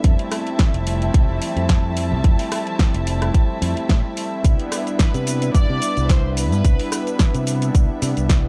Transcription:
Already playing: E5
0.03 F2 F3 G3 A3 C4 E4 A5, kick, closed hi-hat
0.19 closed hi-hat
0.32 cross-stick, open hi-hat
0.47 closed hi-hat
0.59 kick, snare, closed hi-hat
0.74 F1, closed hi-hat
0.86 G3 A3 C4 E4, open hi-hat
1.02 closed hi-hat
1.14 C2, kick, closed hi-hat
1.29 F1
1.42 open hi-hat
1.56 F2, closed hi-hat
1.69 kick, snare, closed hi-hat
1.97 open hi-hat
2.12 C2
2.23 F2 G3 A3 C4 E4, kick, closed hi-hat
2.39 open hi-hat
2.52 cross-stick, open hi-hat
2.67 closed hi-hat
2.79 kick, snare, closed hi-hat
2.94 F1, closed hi-hat
3.06 G3 A3 C4 E4, open hi-hat
3.22 cross-stick, closed hi-hat
3.34 kick, closed hi-hat
3.49 muted fingered electric bass stroke
3.62 F2, open hi-hat
3.77 muted fingered electric bass stroke, closed hi-hat
3.89 A2, kick, snare, closed hi-hat
4.17 open hi-hat
4.43 C2 G3 B3 D4 E4 B4, kick, closed hi-hat, shaker
4.59 closed hi-hat
4.72 cross-stick, open hi-hat, shaker
4.87 closed hi-hat, shaker
4.99 B4, kick, snare, closed hi-hat, shaker
5.14 C3, closed hi-hat, shaker
5.26 G3 B3 D4 E4, open hi-hat, shaker
5.42 closed hi-hat, shaker
5.54 G2 D5, kick, closed hi-hat, shaker
5.70 C3
5.82 open hi-hat, shaker
5.97 C2, closed hi-hat, shaker
6.09 C5, kick, snare, closed hi-hat, shaker
6.37 B4, open hi-hat, shaker
6.52 G2, shaker
6.64 C2 G3 B3 D4 E4, kick, closed hi-hat, shaker
6.79 open hi-hat
6.92 cross-stick, open hi-hat, shaker
7.07 closed hi-hat, shaker
7.19 kick, snare, closed hi-hat, shaker
7.35 C3, closed hi-hat, shaker
7.46 G3 B3 D4 E4, open hi-hat, shaker
7.62 closed hi-hat, shaker
7.75 C2, kick, closed hi-hat, shaker
7.90 muted fingered electric bass stroke
8.02 C3, open hi-hat, shaker
8.17 C2, closed hi-hat, shaker
8.29 kick, snare, closed hi-hat, shaker

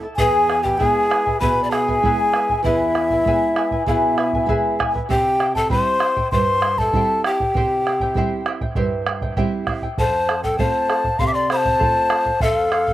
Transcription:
0.03 E4 A4 A5
0.16 E2 G#4 B4 E5 G#5, bombo low
0.20 E4 G#5
0.48 E4 B4 E5 G#5, bombo rim
0.63 E4 G4 B4 G5 G#5, bombo low
0.78 G#3 B3 E4 G#4 B4 E5 G#5, bombo low
1.09 E4 B4 E5 G#5, bombo rim
1.25 E4 B4 G#5, bombo low
1.40 B2 E4 G#4 B4 E5 G#5 B5, bombo low
1.63 D5 B5
1.70 E4 G#4 B4 E5 G#5 A5, bombo rim
1.88 E4 B4 G#5, bombo low
2.02 G#3 B3 E4 G#4 B4 E5 G#5, bombo low
2.34 E4 B4 E5 G#5, bombo rim
2.49 E4 B4 G#5, bombo low
2.63 E2 E4 G#4 B4 E5 G#5, bombo low
2.95 E4 B4 E5 G#5, bombo rim
3.10 E4 B4 G#5, bombo low
3.24 G#3 B3 E4 G#4 B4 E5 G#5, bombo low
3.56 E4 B4 E5 G#5, bombo rim
3.71 E4 B4 G#5, bombo low
3.86 B2 E4 G#4 B4 E5 F5 G#5, bombo low
3.92 E5
4.17 E4 B4 E5 G#5, bombo rim
4.33 E4 B4 G#5, bombo low
4.46 G#3 B3 E4 G#4 B4 E5, bombo low
4.50 G#5
4.79 E4 B4 E5 G#5, bombo rim, bombo low
4.94 E4 B4 G#5, bombo low
5.09 C3 E4 G4 C5 E5 G5, bombo low
5.40 E4 C5 E5 G5, bombo rim
5.55 E4 A4 C5 G5 A5, bombo low
5.70 G3 C4 E4 G4 C5 E5 G5 C6, bombo low
6.00 E4 C5 E5 G5, bombo rim
6.17 E4 C5 G5, bombo low
6.31 G2 E4 G4 C5 E5 G5 C6, bombo low
6.62 E4 C5 E5 G5, bombo rim
6.78 E4 A4 C5 G5 A5, bombo low
6.93 G3 C4 E4 G4 C5 E5 G5, bombo low
7.24 E4 G4 C5 E5 G5, bombo rim
7.40 E4 C5 G5, bombo low
7.54 C3 E4 G4 C5 E5 G5, bombo low
7.86 E4 C5 E5 G5, bombo rim
8.00 E4 C5 G5, bombo low
8.14 G3 C4 E4 G4 C5 E5 G5, bombo low
8.46 E4 C5 E5 G5, bombo rim
8.61 E4 C5 G5, bombo low
8.75 G2 E4 G4 C5 E5 G5, bombo low
9.06 E4 C5 E5 G5, bombo rim
9.21 E4 C5 G5, bombo low
9.37 G3 C4 E4 G4 C5 E5 G5, bombo low
9.67 E4 C5 E5 G5, bombo rim, bombo low
9.82 E4 C5 G5, bombo low
9.98 F2 A4 C5 F5 A5, bombo low
10.29 A4 C5 F5, bombo rim
10.43 A4 C5 F5 G5, bombo low
10.58 A3 C4 F4 A4 C5 F5 A5, bombo low
10.90 A4 C5 F5, bombo rim
11.04 C5 F5, bombo low
11.19 C3 A4 C5 F5 C6, bombo low
11.27 E5 D6
11.34 D5 C6
11.49 A4 C5 F5 B5, bombo rim
11.57 A5
11.65 C5 F5, bombo low
11.79 A3 C4 F4 A4 C5 F5, bombo low
12.09 A4 C5 F5, bombo rim
12.25 C5 F5, bombo low
12.40 F2 A4 C5 E5 F5, bombo low
12.55 F5
12.71 A4 C5 F5, bombo rim
12.87 C5 F5, bombo low

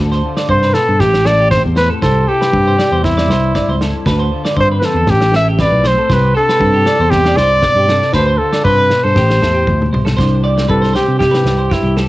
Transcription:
Already playing: D2
0.00 D3 A4
0.12 C5, snare
0.26 F4
0.37 D5, snare
0.49 G2 C3 C5, kick
0.62 B4, snare
0.74 B2 A4, snare
0.88 G2 A4
0.98 A1 A2 E4 G4, kick, snare
1.14 snare
1.25 A1 E4 A4 D5, snare
1.39 G4
1.51 C4 C5, kick, snare
1.65 E2
1.76 A3 B4 C5, snare
1.90 A4
2.02 C2 C3 G4 A4 C5, kick, snare
2.28 E4 G4 A4
2.41 B4, snare
2.53 G2 C4, kick
2.68 C5
2.79 G3 D5, snare
2.92 E2 C5
3.04 C4 E4, kick, snare
3.17 D5, snare
3.28 C2 G2 C5, snare
3.55 C4 D5, kick, snare
3.68 C#2 C5
3.81 E4 A4, snare
4.06 D2 D3 A4 B4, kick, snare
4.19 C5
4.32 F4
4.45 D5, snare
4.56 G2 C4 C5, kick
4.72 B4
4.80 F3 B4, snare
4.85 A4
4.95 E2 A4
5.07 A1 A2 D4 G4, muted clean electric guitar stroke, kick, snare
5.21 E4, snare
5.32 A1 E4 A4 E5, snare
5.48 G4
5.59 C4 B4 D5, kick, snare
5.72 B1
5.84 A3 C5, snare
5.98 A4
6.09 C2 C3 G4 B4 C5, kick, snare
6.34 D4 A4
6.49 E4 B4, snare
6.60 G2 C4, kick
6.74 G4
6.86 G3 D5, snare
6.99 E2 C5
7.11 E4 G4, kick, snare
7.25 D5, snare
7.37 C2 G2 C5 D5, snare
7.62 B2 D5, kick, snare
7.75 G2 G4
7.89 C3 A4, snare
8.02 snare
8.13 D2 D3 A4 B4 C5, kick, snare
8.27 C5
8.38 F4 A4
8.53 D5, snare
8.64 G2 C3 B4 C5, kick
8.78 B4
8.89 B2, snare
9.03 G2 A4 C5
9.15 A1 A2 G4, kick, snare
9.30 snare
9.42 E2 E4 A4, snare
9.54 G4
9.66 D2 A2, kick, high tom
9.82 mid tom
9.92 C2 B2 C5, mid tom
10.05 A4, snare
10.17 C2 C3 D4 C5, kick, snare
10.44 G4 D5
10.58 snare
10.68 C2 G3 A4 B4, kick
10.82 C5, snare
10.93 G4 C5, snare
11.08 C3
11.19 E4 G4, kick, snare
11.31 B4, snare
11.45 C2 G2, snare
11.59 C5
11.70 E4 G4, kick, snare
11.84 C2 G4
11.97 G4 A4, snare

